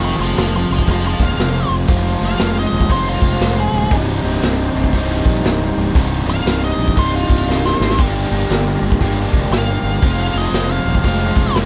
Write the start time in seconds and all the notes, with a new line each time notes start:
Already playing: F1 F2 C3 F3 G#3 C4 F4 G#4 C5
0.04 A#4 D#5
0.18 F1 C5 F5, open hi-hat
0.37 F1 C5 F5, snare, open hi-hat
0.56 C5 F5
0.70 F1 C5 F5, open hi-hat
0.79 kick
0.87 F1 F2 C3 F3 G#3 C4 F4, kick, open hi-hat
0.91 C5 F5
1.07 C5 F5
1.19 D#1, kick, open hi-hat
1.25 F5
1.37 F1, snare, open hi-hat
1.69 F1, open hi-hat
1.87 F1 F2 C3 F3 G#3 C4 F4, kick, open hi-hat
2.20 F1, open hi-hat
2.25 F5
2.38 F1, snare, open hi-hat
2.59 D#5
2.71 D#1, open hi-hat
2.81 kick
2.89 F1 F2 C3 F3 G#3 C4 F4 C5, kick, open hi-hat
3.09 F4
3.21 F1, kick, open hi-hat
3.40 F1, snare, open hi-hat
3.60 G#4
3.73 D1, open hi-hat
3.90 C1 C2 G2 C3 G3 C#4 D#4 E4 G#4 C#5, kick, open hi-hat
4.08 C4 D#4 G4 C5
4.23 C1, open hi-hat
4.42 C1, snare, open hi-hat
4.75 C1, open hi-hat
4.84 kick
4.93 C1 C2 G2 C3 G3 D#4, kick, open hi-hat
5.25 A#1, kick, open hi-hat
5.44 C1, snare, open hi-hat
5.77 C1, open hi-hat
5.95 C1 C2 G2 C3 G3 D#4, kick, open hi-hat
6.26 C1, open hi-hat
6.30 F5
6.45 C1, snare, open hi-hat
6.64 D#5
6.78 A#1, open hi-hat
6.88 kick
6.96 C1 C2 G2 C3 G3 D#4 C5, kick, open hi-hat
7.15 F4
7.29 C1, kick, open hi-hat
7.47 C1, snare
7.65 C5, snare
7.80 G#1, snare
7.90 snare
7.98 G1 G2 D3 G3 A#3 D4 F4 G4 A#4, kick, open hi-hat, splash
8.31 G1, open hi-hat
8.49 G1, snare, open hi-hat
8.81 G1, open hi-hat
8.92 kick
9.01 G1 G2 D3 G3 A#3 D4 G4, kick, open hi-hat
9.33 F1, kick, open hi-hat
9.51 G1 F5, snare, open hi-hat
9.83 G1, open hi-hat
10.01 F1 F2 C3 F3 G#3 C4 F4 G#4 C5, kick, open hi-hat
10.21 F5
10.34 F1 D#5, open hi-hat
10.52 F1, snare, open hi-hat
10.72 F5
10.85 D#1, open hi-hat
10.95 kick
11.04 F1 F2 C3 F3 G#3 C4 F4 F5, kick, open hi-hat
11.36 F1, kick, open hi-hat
11.54 F1, snare, open hi-hat